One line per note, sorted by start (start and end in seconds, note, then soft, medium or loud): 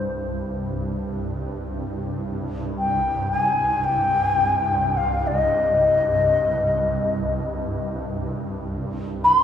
0.00 9.44 C2 medium
0.00 9.44 G2 medium
0.00 0.40 C5 medium
2.78 3.28 G5 medium
3.31 3.85 G#5 medium
3.84 4.98 G5 medium
4.97 5.28 F5 medium
5.27 7.46 D#5 medium
9.24 9.38 B5 loud
9.38 9.44 C6 loud